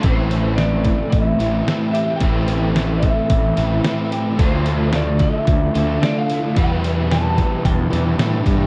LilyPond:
<<
  \new Staff \with { instrumentName = "Clean electric guitar" } { \time 4/4 \key a \minor \tempo 4 = 110 c''4 d''4 e''4. e''8 | g''4. e''2 r8 | c''4 d''8 e''4. d''16 f''8. | g''4 a''4 g''4. r8 | }
  \new Staff \with { instrumentName = "Overdriven electric guitar" } { \time 4/4 \key a \minor <a, e a c' e'>1 | <a, e a c' e'>1 | <d a d' f'>1 | <e, b, e g b e'>1 | }
  \new Staff \with { instrumentName = "Overdriven electric guitar" } { \time 4/4 \key a \minor <a, e a c' e'>2~ <a, e a c' e'>8 <a, e a c' e'>8 <a, e a c' e'>4 | <a, e a c' e'>2~ <a, e a c' e'>8 <a, e a c' e'>8 <a, e a c' e'>4 | <d a d' f'>2~ <d a d' f'>8 <d a d' f'>8 <d a d' f'>4 | <e, b, e g b e'>2~ <e, b, e g b e'>8 <e, b, e g b e'>8 <e, b, e g b e'>4 | }
  \new Staff \with { instrumentName = "Twelve-string acoustic guitar" } { \time 4/4 \key a \minor e8 a8 e8 a8 c'8 e8 c'8 g'8 | e8 a8 e8 a8 c'8 e8 c'8 g'8 | f8 a8 f8 f8 a8 f8 a8 e'8 | b8 d'8 b8 b8 d'8 b8 d'8 g'8 | }
  \new Staff \with { instrumentName = "Fingered electric bass" } { \clef bass \time 4/4 \key a \minor a,,2 a,,8 a,,8 r4 | a,,2 a,,8 a,,8 r4 | d,2 d,8 d,8 r4 | e,2 e,8 e,8 a,8 g,8 | }
  \new DrumStaff \with { instrumentName = "Drums" } \drummode { \time 4/4 <hho bd>8 hho8 <hho sn>8 <hho bd>8 <hho bd>8 hho8 <hho sn>8 hho8 | <hho bd>8 hho8 <hho sn>8 <hho bd>8 <hho bd>8 hho8 <hho sn>8 hho8 | <hho bd>8 hho8 <hho sn>8 <hho bd>8 <hho bd>8 hho8 <hho sn>8 hho8 | <hho bd>8 hho8 <hho sn>8 <hho bd>8 <hho bd>8 hho8 <hho sn>8 <hho bd>8 | }
>>